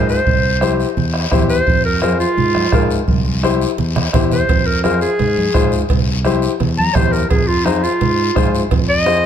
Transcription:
Already playing: fingered electric bass G#2, upright piano F4 G#4 A#4
0.09 clarinet C5, short guiro
0.26 fingered electric bass C2, bombo low, long guiro
0.61 upright piano E4 G4 C5, bombo rim, high conga, short guiro
0.80 short guiro
0.97 fingered electric bass E2, low conga, long guiro
1.14 bombo rim
1.31 fingered electric bass E2, upright piano E4 G4 C5, bombo low, bombo rim, high conga, short guiro
1.49 clarinet C5, short guiro
1.67 fingered electric bass F2, bombo low, long guiro
1.85 clarinet A#4
2.02 upright piano F4 G#4 C5, clarinet A#4, bombo rim, high conga, short guiro
2.20 clarinet F4, short guiro
2.37 fingered electric bass G#2, low conga, long guiro
2.55 bombo rim, high conga
2.72 fingered electric bass G#2, upright piano F4 G#4 A#4, bombo low, bombo rim, high conga, low conga, short guiro
2.91 short guiro
3.08 fingered electric bass C2, bombo low, high conga, long guiro
3.25 high conga
3.43 upright piano E4 G4 C5, bombo rim, high conga, short guiro
3.62 short guiro
3.78 fingered electric bass E2, low conga, long guiro
3.96 bombo rim, low conga
4.13 fingered electric bass E2, upright piano E4 G4 C5, bombo low, bombo rim, low conga, short guiro
4.31 clarinet C5, low conga, short guiro
4.49 fingered electric bass F2, bombo low, cowbell, long guiro
4.66 clarinet A#4
4.84 upright piano F4 G#4 C5, clarinet A#4, bombo rim, high conga, short guiro
5.01 clarinet G#4, short guiro
5.19 fingered electric bass G#2, cowbell, low conga, long guiro
5.38 high conga
5.54 fingered electric bass G#2, upright piano F4 G#4 C5, bombo low, bombo rim, high conga, short guiro
5.72 short guiro
5.89 fingered electric bass C2, bombo low, cowbell, long guiro
6.24 upright piano E4 G4 C5, bombo rim, high conga, short guiro
6.42 short guiro
6.60 fingered electric bass E2, cowbell, low conga, long guiro
6.78 clarinet A#5, high conga
6.95 fingered electric bass E2, upright piano E4 G4 C5, clarinet C5, bombo low, bombo rim, high conga, low conga, short guiro
7.13 clarinet A#4, short guiro
7.30 fingered electric bass F2, clarinet G#4, bombo low, cowbell, long guiro
7.47 clarinet F4
7.65 clarinet D#4, upright piano F4 G#4 C5, bombo rim, high conga, short guiro
7.83 clarinet F4, short guiro
8.01 fingered electric bass G#2, cowbell, low conga, long guiro
8.35 fingered electric bass G#2, upright piano F4 G#4 C5, bombo low, bombo rim, high conga, low conga, short guiro
8.55 short guiro
8.71 fingered electric bass F2, bombo low, cowbell, low conga, long guiro
8.89 clarinet D#5
9.06 upright piano F4 G#4 C5, bombo rim, high conga, short guiro

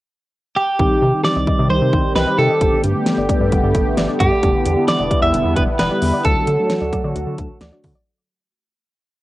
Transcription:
0.56 clean electric guitar G4
0.79 analog synth bass C2, synth pluck D#3, analog synth pad D#3 G3 C4 G4, analog polysynth G3 C4 D#4 G4, kick
0.91 synth pluck D#3
1.02 analog synth bass C3, synth pluck D#3
1.13 analog polysynth G3 C4 D#4 G4
1.24 clean electric guitar D5, snare
1.36 analog synth bass C2, synth pluck D#5
1.47 analog polysynth G3 C4 D#4 G4, synth pluck D#5, kick
1.59 analog synth bass C3, synth pluck D#5
1.70 analog synth bass C2, synth pluck D#3, clean electric guitar C5
1.82 analog synth bass C3, synth pluck D#3
1.93 analog synth bass C2, synth pluck D#3, kick
2.16 analog synth bass C2, clean electric guitar B4, synth pluck D#5, snare
2.27 analog polysynth G3 C4 D#4 G4, synth pluck D#5
2.38 analog synth bass C3, synth pluck D#3, clean electric guitar A4
2.50 synth pluck D#5
2.61 analog synth bass G1, analog synth pad D3 A3 B3, synth pluck D3, analog polysynth G3 B3 D4 G4, kick, closed hi-hat
2.72 synth pluck D3
2.84 analog synth bass G2, synth pluck D3, closed hi-hat
2.95 analog polysynth G3 B3 D4 G4
3.06 snare, closed hi-hat
3.18 analog synth bass G1, synth pluck D5
3.29 analog polysynth G3 B3 D4 A4, synth pluck D5, kick, closed hi-hat
3.40 analog synth bass G2, synth pluck D5
3.52 analog synth bass G1, synth pluck D3, kick, closed hi-hat
3.63 analog synth bass G2, synth pluck D3
3.75 analog synth bass G1, synth pluck D3, kick, closed hi-hat
3.97 analog synth bass G1, synth pluck D5, snare, closed hi-hat
4.09 analog polysynth G3 B3 D4 G4, synth pluck D5
4.20 analog synth bass G2, synth pluck D3, clean electric guitar G4, kick, closed hi-hat
4.31 synth pluck D5
4.43 analog synth bass E1, synth pluck D3, analog polysynth G3 B3 E4 G4, analog synth pad G3 B3 E4, kick, closed hi-hat
4.54 synth pluck D3
4.65 analog synth bass E2, synth pluck D3, closed hi-hat
4.77 analog polysynth G3 B3 E4 G4
4.88 clean electric guitar D5, snare, closed hi-hat
5.00 analog synth bass E1, synth pluck D5
5.11 analog polysynth G3 B3 E4 G4, synth pluck D5, kick, closed hi-hat
5.22 analog synth bass E2, synth pluck D5, clean electric guitar E5
5.34 analog synth bass E1, synth pluck D3, closed hi-hat
5.45 analog synth bass E2, synth pluck D3
5.56 analog synth bass E1, synth pluck D3, clean electric guitar B4, kick, closed hi-hat
5.79 analog synth bass E1, clean electric guitar B4, synth pluck D5, snare, closed hi-hat
5.91 analog polysynth G3 B3 E4 G4, synth pluck D5
6.02 analog synth bass E2, synth pluck D3, open hi-hat
6.13 synth pluck D5
6.25 analog synth bass D2, synth pluck D3, analog polysynth F#3 A3 D4 F#4, analog synth pad F#3 A3 F#4, clean electric guitar A4, kick, closed hi-hat
6.36 synth pluck D3
6.47 analog synth bass D3, synth pluck D3, closed hi-hat
6.59 analog polysynth F#3 A3 D4 A4
6.70 snare, closed hi-hat
6.81 analog synth bass D2, synth pluck D5
6.93 analog polysynth F#3 A3 D4 A4, synth pluck D5, kick, closed hi-hat
7.04 analog synth bass D3, synth pluck D5
7.15 analog synth bass D2, synth pluck D3, closed hi-hat
7.27 analog synth bass D3, synth pluck D3
7.38 analog synth bass D2, synth pluck D3, kick, closed hi-hat
7.61 analog synth bass D2, synth pluck D5, snare, closed hi-hat
7.72 analog polysynth F#3 A3 D4 F#4, synth pluck D5
7.84 synth pluck D3, analog synth bass D3, kick, open hi-hat
7.95 synth pluck D5

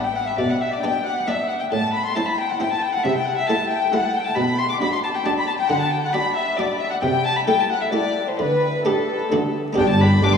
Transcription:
Already playing: harpsichord B3 D4 D5, viola section D4, violin section B4
0.03 violin section G5, violin G5
0.15 violin F#5, violin section F#5
0.27 violin section E5, violin E5
0.38 harpsichord B2, cello section B2, violin section D5, violin D5
0.49 violin section F#5, violin F#5
0.61 violin section E5, violin E5
0.71 violin section D5, violin D5
0.80 harpsichord B3 D4 D5, viola section D4, violin section B4 G5, violin G5
1.05 violin section F#5, violin F#5
1.26 harpsichord B3 D4 D5, viola section D4, violin section B4 E5, violin E5
1.48 violin section F#5, violin F#5
1.60 violin section G5, violin G5
1.71 harpsichord A2, cello section A2, violin A5, violin section A5
1.93 violin B5, violin section B5
2.05 violin C6, violin section C6
2.16 harpsichord C4 E4 C5, viola section E4, violin section C5 A5, violin A5
2.26 violin B5, violin section B5
2.38 violin G5, violin section G5
2.49 violin F#5, violin section F#5
2.60 harpsichord C4 E4 C5, viola section E4, violin section C5 G5, violin G5
2.72 violin A5, violin section A5
2.82 violin G5, violin section G5
2.93 violin F#5, violin section F#5
3.04 cello section C3, harpsichord C3, violin E5, violin section E5
3.15 violin G5, violin section G5
3.25 violin F#5, violin section F#5
3.37 violin E5, violin section E5
3.47 harpsichord A3 E4 C5, viola section E4, violin section A4 A5, violin A5
3.70 violin G5, violin section G5
3.92 harpsichord A3 E4 C5, viola section E4, violin section A4 F#5, violin F#5
4.14 violin G5, violin section G5
4.24 violin A5, violin section A5
4.35 harpsichord B2, cello section B2, violin B5
4.40 violin section B5
4.58 violin C6, violin section C6
4.70 violin D6, violin section D6
4.80 viola section D4, harpsichord F#4 D5, violin section F#4 B5, violin B5
4.93 violin C6, violin section C6
5.04 violin A5, violin section A5
5.15 violin G5, violin section G5
5.25 viola section D4, harpsichord F#4 D5, violin section F#4 A5, violin A5
5.38 violin B5, violin section B5
5.48 violin A5, violin section A5
5.59 violin G5, violin section G5
5.68 harpsichord D3, cello section D3, violin F#5, violin section F#5
5.80 violin A5, violin section A5
5.91 violin G5, violin section G5
6.02 violin F#5, violin section F#5
6.13 viola section D4, harpsichord F#4 D5, violin section F#4 B5, violin B5
6.35 violin E5, violin section E5
6.57 viola section D4, violin section F#4 D5, harpsichord F#4 D5, violin D5
6.79 violin E5, violin section E5
6.91 violin F#5, violin section F#5
7.01 harpsichord C3, cello section C3, violin G5, violin section G5
7.25 violin A5, violin section A5
7.36 violin B5, violin section B5
7.47 harpsichord A3 E4 A4, viola section E4, violin G5, violin section G5
7.59 violin section A5, violin A5
7.70 violin F#5, violin section F#5
7.82 violin E5, violin section E5
7.92 harpsichord A3 E4 A4, viola section E4, violin section A4 D5, violin D5
8.28 violin section C5, violin C5
8.39 harpsichord D3, cello section D3, violin B4, violin section B4
8.85 harpsichord A3 D4 G4, viola section D4, violin section G4 A4, violin A4
9.32 harpsichord D3 A3 D4 F#4, cello section D3, viola section D4, violin section F#4
9.73 harpsichord B3 D4 G4
9.77 double bass section G1, harpsichord G2, cello section G2, viola section D4, violin section G4 G5, violin G5
9.89 violin A5, violin section A5
10.00 viola section D4, violin section G4 B5, violin B5
10.22 double bass section G1, harpsichord G2, cello section G2, viola section D4, violin section G4 D6, violin D6

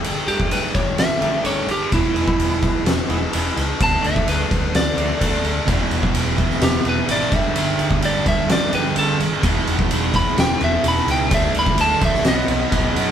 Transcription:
Already playing: distorted electric guitar G2 D3 G3
0.04 picked electric bass G1, ride
0.27 picked electric bass G1, clean electric guitar G3 A3 D4 G4, lead electric guitar G4, ride
0.40 kick
0.50 picked electric bass G1, clean electric guitar G3 A3 D4 G4, lead electric guitar B4, ride
0.74 picked electric bass G1, lead electric guitar C#5, kick, ride
0.97 picked electric bass G1, distorted electric guitar G2 D3 G3, lead electric guitar E5, snare, ride
1.20 picked electric bass G1, distorted electric guitar G2 D3 G3, clean electric guitar G3 A3 D4 G4, ride
1.44 picked electric bass G1, clean electric guitar G3 A3 D4 G4, lead electric guitar C#5, ride
1.67 picked electric bass G1, ride
1.71 lead electric guitar G4
1.91 picked electric bass E1, distorted electric guitar E2 B2 E3, lead electric guitar E4, kick, ride
2.14 picked electric bass E1, clean electric guitar E3 G#3 B3 E4, ride
2.28 kick
2.38 picked electric bass E1, clean electric guitar E3 G#3 B3 E4, ride
2.62 kick, ride
2.85 picked electric bass E1, snare, ride
3.08 picked electric bass E1, distorted electric guitar E2 B2 E3, clean electric guitar E3 G#3 B3 E4, ride
3.32 picked electric bass E1, distorted electric guitar E2 B2 E3, clean electric guitar E3 G#3 B3 E4, ride
3.57 picked electric bass C#2, ride
3.79 picked electric bass D2, distorted electric guitar D3 A3 D4, kick, ride
3.84 lead electric guitar A5
4.02 picked electric bass D2, clean electric guitar D3 A3 D4 F#4, ride
4.06 lead electric guitar E5
4.16 kick
4.26 picked electric bass D2, clean electric guitar D3 A3 D4 F#4, lead electric guitar B4, ride
4.51 picked electric bass D2, kick, ride
4.73 picked electric bass D2, lead electric guitar D5, snare, ride
4.96 picked electric bass D2, clean electric guitar D3 A3 D4 F#4, distorted electric guitar D3 A3 D4, ride
5.19 picked electric bass D2, clean electric guitar D3 A3 D4 F#4, distorted electric guitar D3 A3 D4, kick, ride
5.42 picked electric bass D2, ride
5.67 picked electric bass E1, distorted electric guitar E2 B2 E3, kick, ride
5.90 picked electric bass E1, ride
6.03 kick
6.14 picked electric bass E1, ride
6.36 distorted electric guitar E2 B2 E3, kick, ride
6.50 snare
6.61 picked electric bass E1, lead electric guitar G4, snare, ride
6.84 picked electric bass E1, distorted electric guitar E2 B2 E3, ride
6.89 lead electric guitar B4
7.08 picked electric bass G#1, distorted electric guitar E2 B2 E3, lead electric guitar D5, ride
7.31 picked electric bass G1, distorted electric guitar G2 D3 G3, kick, ride
7.36 lead electric guitar E5
7.55 picked electric bass G1, ride
7.78 picked electric bass G1, ride
7.91 kick
8.02 picked electric bass G1, distorted electric guitar G2 D3 G3, lead electric guitar D5, ride
8.26 picked electric bass G1, lead electric guitar E5, kick, ride
8.47 picked electric bass G1, distorted electric guitar G2 D3 G3, snare, ride
8.52 lead electric guitar D5
8.71 picked electric bass G1, distorted electric guitar G2 D3 G3, lead electric guitar B4, ride
8.96 picked electric bass G1, lead electric guitar A4, ride
9.20 picked electric bass G1, ride
9.41 picked electric bass E1, distorted electric guitar E2 B2 E3, kick, ride
9.67 picked electric bass E1, ride
9.79 kick
9.90 picked electric bass E1, ride
10.12 distorted electric guitar E2 B2 E3, lead electric guitar B5, kick, ride
10.37 picked electric bass E1, lead electric guitar G5, snare, ride
10.59 picked electric bass E1, distorted electric guitar E2 B2 E3, ride
10.64 lead electric guitar E5
10.83 picked electric bass E1, distorted electric guitar E2 B2 E3, ride
10.88 lead electric guitar B5
11.07 picked electric bass C#2, ride
11.11 lead electric guitar G5
11.29 picked electric bass D2, distorted electric guitar D3 A3 D4, kick, ride
11.34 lead electric guitar E5
11.54 picked electric bass D2, ride
11.59 lead electric guitar B5
11.66 kick
11.77 picked electric bass D2, lead electric guitar A5, ride
12.00 picked electric bass A#1, distorted electric guitar D3 A3 D4, kick, ride
12.05 lead electric guitar E5
12.14 snare
12.23 picked electric bass B1, distorted electric guitar B2 F#3 B3, snare, ride
12.28 lead electric guitar D#5
12.48 picked electric bass B1, ride
12.72 picked electric bass B1, kick, ride
12.95 picked electric bass F#2, distorted electric guitar B2 F#3 B3, ride

